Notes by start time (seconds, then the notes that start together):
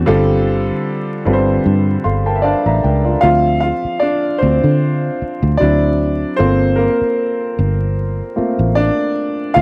0.06 G1 D3 G3 C4 F4 A4
1.25 G1 D3 G3 C4 F4 B4
1.33 C5
1.66 G2
2.04 G1 A4 F5 C6
2.26 A#4 G5 A5
2.36 E5
2.42 D4 C5 D5 F5 A5
2.66 A1 D5 E5 A#5
2.83 C#2 A#4 G5
3.04 F4 D5
3.21 D2 F3 C4 F4 E5 F5
3.61 F4 F5
3.85 muted fingered electric bass stroke
4.00 D4 D5
4.38 C4 C5
4.42 D2
4.64 D3
5.22 muted fingered electric bass stroke
5.43 D2
5.57 D2 F#3 C4 D4 E4 D5
6.36 G1 A#3 C4 F4 A4 C5
6.76 A#3 A#4
7.01 muted fingered electric bass stroke
7.59 G1
8.36 A3 A#3 C4 F4, muted fingered electric bass stroke
8.59 A1
8.75 D4 D5
9.54 D2 F3 C4 F4 E5 F5